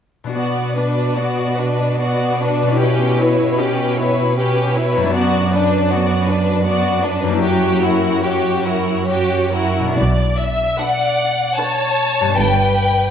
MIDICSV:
0, 0, Header, 1, 7, 480
1, 0, Start_track
1, 0, Key_signature, 2, "minor"
1, 0, Tempo, 825309
1, 199, Time_signature, 3, 2, 24, 8
1, 1636, Tempo, 779221
1, 3076, Tempo, 755668
1, 4516, Tempo, 803213
1, 4996, Tempo, 875912
1, 5956, Tempo, 805369
1, 7823, End_track
2, 0, Start_track
2, 0, Title_t, "Violin section"
2, 0, Program_c, 0, 48
2, 200, Note_on_c, 0, 74, 25
2, 425, Note_off_c, 0, 74, 0
2, 440, Note_on_c, 0, 71, 23
2, 679, Note_on_c, 0, 74, 25
2, 681, Note_off_c, 0, 71, 0
2, 913, Note_on_c, 0, 71, 23
2, 920, Note_off_c, 0, 74, 0
2, 1159, Note_off_c, 0, 71, 0
2, 1159, Note_on_c, 0, 74, 28
2, 1384, Note_off_c, 0, 74, 0
2, 1392, Note_on_c, 0, 71, 27
2, 1619, Note_off_c, 0, 71, 0
2, 1626, Note_on_c, 0, 71, 28
2, 1855, Note_off_c, 0, 71, 0
2, 1867, Note_on_c, 0, 73, 26
2, 2109, Note_on_c, 0, 71, 31
2, 2113, Note_off_c, 0, 73, 0
2, 2347, Note_on_c, 0, 73, 28
2, 2354, Note_off_c, 0, 71, 0
2, 2592, Note_off_c, 0, 73, 0
2, 2596, Note_on_c, 0, 71, 32
2, 2818, Note_off_c, 0, 71, 0
2, 2832, Note_on_c, 0, 73, 35
2, 3072, Note_on_c, 0, 74, 36
2, 3074, Note_off_c, 0, 73, 0
2, 3302, Note_off_c, 0, 74, 0
2, 3316, Note_on_c, 0, 71, 31
2, 3555, Note_off_c, 0, 71, 0
2, 3558, Note_on_c, 0, 74, 35
2, 3785, Note_on_c, 0, 71, 34
2, 3791, Note_off_c, 0, 74, 0
2, 4026, Note_off_c, 0, 71, 0
2, 4031, Note_on_c, 0, 74, 37
2, 4256, Note_off_c, 0, 74, 0
2, 4274, Note_on_c, 0, 71, 35
2, 4517, Note_off_c, 0, 71, 0
2, 4521, Note_on_c, 0, 73, 31
2, 4737, Note_off_c, 0, 73, 0
2, 4748, Note_on_c, 0, 70, 33
2, 4994, Note_off_c, 0, 70, 0
2, 4994, Note_on_c, 0, 73, 32
2, 5222, Note_on_c, 0, 70, 29
2, 5227, Note_off_c, 0, 73, 0
2, 5459, Note_on_c, 0, 73, 29
2, 5463, Note_off_c, 0, 70, 0
2, 5694, Note_off_c, 0, 73, 0
2, 5710, Note_on_c, 0, 70, 29
2, 5953, Note_off_c, 0, 70, 0
2, 5954, Note_on_c, 0, 74, 37
2, 6181, Note_off_c, 0, 74, 0
2, 6200, Note_on_c, 0, 76, 43
2, 6437, Note_on_c, 0, 78, 47
2, 6439, Note_off_c, 0, 76, 0
2, 6910, Note_on_c, 0, 81, 53
2, 6914, Note_off_c, 0, 78, 0
2, 7390, Note_on_c, 0, 79, 41
2, 7393, Note_off_c, 0, 81, 0
2, 7823, Note_off_c, 0, 79, 0
2, 7823, End_track
3, 0, Start_track
3, 0, Title_t, "Violin section"
3, 0, Program_c, 1, 48
3, 203, Note_on_c, 1, 66, 27
3, 427, Note_off_c, 1, 66, 0
3, 449, Note_on_c, 1, 62, 24
3, 683, Note_on_c, 1, 66, 23
3, 685, Note_off_c, 1, 62, 0
3, 923, Note_off_c, 1, 66, 0
3, 927, Note_on_c, 1, 62, 23
3, 1167, Note_off_c, 1, 62, 0
3, 1172, Note_on_c, 1, 66, 25
3, 1391, Note_off_c, 1, 66, 0
3, 1405, Note_on_c, 1, 62, 26
3, 1634, Note_on_c, 1, 67, 31
3, 1637, Note_off_c, 1, 62, 0
3, 1859, Note_off_c, 1, 67, 0
3, 1873, Note_on_c, 1, 71, 28
3, 2114, Note_on_c, 1, 67, 27
3, 2115, Note_off_c, 1, 71, 0
3, 2348, Note_on_c, 1, 71, 31
3, 2357, Note_off_c, 1, 67, 0
3, 2593, Note_off_c, 1, 71, 0
3, 2610, Note_on_c, 1, 67, 31
3, 2826, Note_off_c, 1, 67, 0
3, 2840, Note_on_c, 1, 71, 33
3, 3078, Note_off_c, 1, 71, 0
3, 3081, Note_on_c, 1, 66, 34
3, 3307, Note_off_c, 1, 66, 0
3, 3329, Note_on_c, 1, 62, 34
3, 3552, Note_on_c, 1, 66, 32
3, 3561, Note_off_c, 1, 62, 0
3, 3788, Note_off_c, 1, 66, 0
3, 3798, Note_on_c, 1, 62, 33
3, 4025, Note_on_c, 1, 66, 34
3, 4033, Note_off_c, 1, 62, 0
3, 4253, Note_off_c, 1, 66, 0
3, 4270, Note_on_c, 1, 62, 33
3, 4516, Note_off_c, 1, 62, 0
3, 4522, Note_on_c, 1, 67, 33
3, 4738, Note_off_c, 1, 67, 0
3, 4757, Note_on_c, 1, 66, 34
3, 4999, Note_off_c, 1, 66, 0
3, 5003, Note_on_c, 1, 67, 30
3, 5231, Note_on_c, 1, 66, 29
3, 5232, Note_off_c, 1, 67, 0
3, 5467, Note_off_c, 1, 66, 0
3, 5471, Note_on_c, 1, 67, 31
3, 5700, Note_off_c, 1, 67, 0
3, 5719, Note_on_c, 1, 66, 26
3, 5958, Note_off_c, 1, 66, 0
3, 6451, Note_on_c, 1, 74, 33
3, 6898, Note_off_c, 1, 74, 0
3, 6910, Note_on_c, 1, 73, 42
3, 7383, Note_off_c, 1, 73, 0
3, 7399, Note_on_c, 1, 71, 40
3, 7823, Note_off_c, 1, 71, 0
3, 7823, End_track
4, 0, Start_track
4, 0, Title_t, "Viola section"
4, 0, Program_c, 2, 48
4, 192, Note_on_c, 2, 59, 25
4, 421, Note_off_c, 2, 59, 0
4, 439, Note_on_c, 2, 62, 25
4, 675, Note_on_c, 2, 59, 27
4, 680, Note_off_c, 2, 62, 0
4, 919, Note_off_c, 2, 59, 0
4, 923, Note_on_c, 2, 62, 24
4, 1158, Note_on_c, 2, 59, 26
4, 1164, Note_off_c, 2, 62, 0
4, 1383, Note_off_c, 2, 59, 0
4, 1402, Note_on_c, 2, 62, 28
4, 1634, Note_on_c, 2, 61, 31
4, 1636, Note_off_c, 2, 62, 0
4, 1859, Note_off_c, 2, 61, 0
4, 1872, Note_on_c, 2, 64, 29
4, 2111, Note_on_c, 2, 61, 31
4, 2115, Note_off_c, 2, 64, 0
4, 2351, Note_on_c, 2, 64, 28
4, 2355, Note_off_c, 2, 61, 0
4, 2591, Note_on_c, 2, 61, 31
4, 2594, Note_off_c, 2, 64, 0
4, 2815, Note_off_c, 2, 61, 0
4, 2831, Note_on_c, 2, 64, 32
4, 3074, Note_off_c, 2, 64, 0
4, 3074, Note_on_c, 2, 59, 35
4, 3303, Note_off_c, 2, 59, 0
4, 3320, Note_on_c, 2, 62, 33
4, 3555, Note_on_c, 2, 59, 36
4, 3557, Note_off_c, 2, 62, 0
4, 3789, Note_off_c, 2, 59, 0
4, 3790, Note_on_c, 2, 62, 33
4, 4028, Note_on_c, 2, 59, 32
4, 4029, Note_off_c, 2, 62, 0
4, 4254, Note_off_c, 2, 59, 0
4, 4266, Note_on_c, 2, 62, 32
4, 4512, Note_on_c, 2, 66, 37
4, 4513, Note_off_c, 2, 62, 0
4, 4733, Note_off_c, 2, 66, 0
4, 4752, Note_on_c, 2, 64, 34
4, 4996, Note_off_c, 2, 64, 0
4, 4998, Note_on_c, 2, 66, 33
4, 5229, Note_off_c, 2, 66, 0
4, 5231, Note_on_c, 2, 64, 28
4, 5462, Note_on_c, 2, 66, 26
4, 5467, Note_off_c, 2, 64, 0
4, 5695, Note_off_c, 2, 66, 0
4, 5717, Note_on_c, 2, 64, 26
4, 5957, Note_off_c, 2, 64, 0
4, 6440, Note_on_c, 2, 62, 35
4, 6442, Note_on_c, 2, 71, 31
4, 6796, Note_off_c, 2, 62, 0
4, 6797, Note_off_c, 2, 71, 0
4, 6918, Note_on_c, 2, 62, 29
4, 6919, Note_on_c, 2, 71, 34
4, 7278, Note_off_c, 2, 62, 0
4, 7278, Note_off_c, 2, 71, 0
4, 7823, End_track
5, 0, Start_track
5, 0, Title_t, "Harp"
5, 0, Program_c, 3, 46
5, 139, Note_on_c, 3, 47, 25
5, 147, Note_on_c, 3, 59, 21
5, 155, Note_on_c, 3, 62, 23
5, 168, Note_on_c, 3, 66, 21
5, 1520, Note_off_c, 3, 47, 0
5, 1527, Note_on_c, 3, 47, 29
5, 1553, Note_on_c, 3, 61, 25
5, 1579, Note_on_c, 3, 64, 24
5, 1606, Note_on_c, 3, 67, 24
5, 1630, Note_off_c, 3, 62, 0
5, 1639, Note_off_c, 3, 66, 0
5, 2461, Note_off_c, 3, 59, 0
5, 2961, Note_on_c, 3, 42, 36
5, 2989, Note_on_c, 3, 59, 30
5, 3016, Note_on_c, 3, 62, 28
5, 3038, Note_off_c, 3, 47, 0
5, 3044, Note_on_c, 3, 66, 28
5, 3052, Note_off_c, 3, 61, 0
5, 3065, Note_off_c, 3, 64, 0
5, 3080, Note_off_c, 3, 67, 0
5, 4393, Note_off_c, 3, 42, 0
5, 4401, Note_on_c, 3, 42, 37
5, 4429, Note_on_c, 3, 58, 30
5, 4458, Note_on_c, 3, 64, 31
5, 4486, Note_on_c, 3, 67, 28
5, 4491, Note_off_c, 3, 59, 0
5, 4505, Note_off_c, 3, 62, 0
5, 5423, Note_off_c, 3, 66, 0
5, 5857, Note_on_c, 3, 47, 29
5, 5882, Note_on_c, 3, 59, 24
5, 5907, Note_on_c, 3, 62, 25
5, 5924, Note_off_c, 3, 42, 0
5, 5931, Note_on_c, 3, 71, 23
5, 5936, Note_off_c, 3, 58, 0
5, 5949, Note_off_c, 3, 64, 0
5, 5961, Note_off_c, 3, 67, 0
5, 7288, Note_on_c, 3, 43, 32
5, 7307, Note_off_c, 3, 59, 0
5, 7314, Note_on_c, 3, 59, 25
5, 7334, Note_off_c, 3, 62, 0
5, 7341, Note_on_c, 3, 62, 26
5, 7361, Note_off_c, 3, 47, 0
5, 7361, Note_off_c, 3, 71, 0
5, 7368, Note_on_c, 3, 71, 25
5, 7823, Note_off_c, 3, 43, 0
5, 7823, Note_off_c, 3, 59, 0
5, 7823, Note_off_c, 3, 62, 0
5, 7823, Note_off_c, 3, 71, 0
5, 7823, End_track
6, 0, Start_track
6, 0, Title_t, "Cello section"
6, 0, Program_c, 4, 48
6, 194, Note_on_c, 4, 47, 30
6, 3049, Note_off_c, 4, 47, 0
6, 3077, Note_on_c, 4, 42, 41
6, 5819, Note_off_c, 4, 42, 0
6, 5958, Note_on_c, 4, 47, 41
6, 6344, Note_off_c, 4, 47, 0
6, 7393, Note_on_c, 4, 43, 38
6, 7778, Note_off_c, 4, 43, 0
6, 7823, End_track
7, 0, Start_track
7, 0, Title_t, "Double bass section"
7, 0, Program_c, 5, 48
7, 5958, Note_on_c, 5, 35, 41
7, 6344, Note_off_c, 5, 35, 0
7, 7398, Note_on_c, 5, 31, 43
7, 7780, Note_off_c, 5, 31, 0
7, 7823, End_track
0, 0, End_of_file